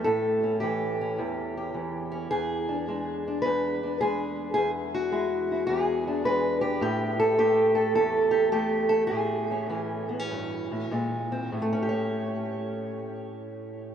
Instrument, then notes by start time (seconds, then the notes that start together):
steel-string acoustic guitar
Already playing: G4
0.04 A2 A4
0.43 C#4
0.60 E3 G4
1.01 C#4
1.18 E2
1.57 G4
1.74 E3
2.12 C#4
2.31 E2 G#4
2.69 D4
2.88 G#3 D4
3.28 D4
3.42 E2 B4
3.83 D4
4.01 G#3 G#4
4.54 E2 G#4
4.94 F#4
5.12 G#3 E4
5.52 E4
5.67 E2 G#4
6.07 D4
6.25 G#3 B4
6.61 G4
6.81 A2 G4
7.20 A4
7.38 A3 G4
7.75 A4
7.95 E2 A4
8.31 G4
8.52 A3 G4
8.89 A4
9.07 G#4
9.11 A2
9.51 C#4
9.69 E3 C#4
10.09 B3
10.19 C#4
10.26 F#4
10.31 G2
10.71 A2
10.91 A#2 G#3
11.32 C4
11.52 A2
11.62 A3
11.73 C#4
11.82 G4
11.89 C#5